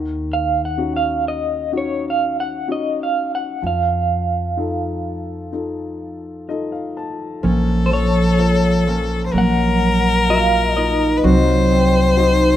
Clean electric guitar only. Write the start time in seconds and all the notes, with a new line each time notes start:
0.33 F5
0.65 F#5
0.96 F5
1.28 D#5
1.77 C#5
2.10 F5
2.40 F#5
2.72 D#5
3.03 F5
3.35 F#5
3.67 F5
7.86 C5
7.93 C#5
9.38 F#5
10.30 F5
10.77 D#5